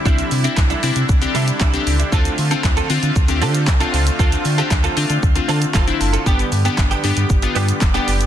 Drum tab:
HH |-xox-xox-xox-xox|-xox-xox-xox-xox|-xox-xox-xox-xox|-xox-xox-xox-xox|
SH |xxxxxxxxxxxxxxxx|xxxxxxxxxxxxxxxx|xxxxxxxxxxxxxxxx|xxxxxxxxxxxxxxxx|
CP |----x-------x---|----x-------x---|----x-------x---|----x-------x---|
SD |----o-------o---|----o-------o---|----o-------o---|----o-------o---|
BD |o---o---o---o---|o---o---o---o---|o---o---o---o---|o---o---o---o---|